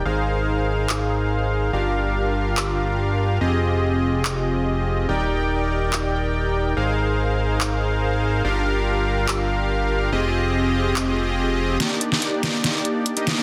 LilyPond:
<<
  \new Staff \with { instrumentName = "Analog polysynth" } { \time 4/4 \key aes \lydian \tempo 4 = 143 <ees' aes' bes' c'' f''>1 | <d' f' g' bes' f''>1 | <c' f' g' aes' ees''>1 | <ees' g' bes' d'' g''>1 |
<ees' aes' bes' c'' f''>1 | <d' f' g' bes' f''>1 | <c' f' g' aes' ees''>1 | <bes d' ees' g' d''>8. <bes d' ees' g' d''>2~ <bes d' ees' g' d''>8 <bes d' ees' g' ees''>8 <bes d' ees' g' d''>16 | }
  \new Staff \with { instrumentName = "Analog synth bass" } { \clef bass \time 4/4 \key aes \lydian aes,,1 | g,,1 | f,,1 | ees,,1 |
aes,,1 | g,,1 | f,,1 | r1 | }
  \new DrumStaff \with { instrumentName = "Drums" } \drummode { \time 4/4 r4 r4 hc4 r4 | r4 r4 hc4 r4 | r4 r4 hc4 r4 | r4 r4 hc4 r4 |
r4 r4 hc4 r4 | r4 r4 hc4 r4 | r4 r4 hc4 r4 | <hh sn>8 hh16 sn16 hh8 <hh sn>8 <hh sn>8 hh8 hh16 hh16 <hh sn>8 | }
>>